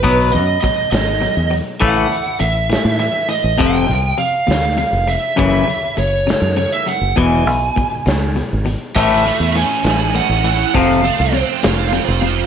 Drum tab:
CC |------|------|------|------|
HH |xxxxxx|xxxxxx|xxxxxx|xxxxxx|
SD |---o--|---o--|---o--|---o--|
BD |o-o---|o-----|o-----|o-----|

CC |------|x-----|------|
HH |xxxxxx|-xxxxx|xxxxxx|
SD |---o--|---o--|---o--|
BD |o-o---|o-----|o-----|